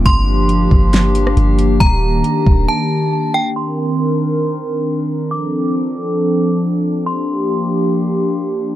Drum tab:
HH |x---x---x-x-x-x-|x---x-----------|----------------|----------------|
SD |--------o--r----|----------------|----------------|----------------|
BD |o-----o---------|o-----o---------|----------------|----------------|

HH |----------------|
SD |----------------|
BD |----------------|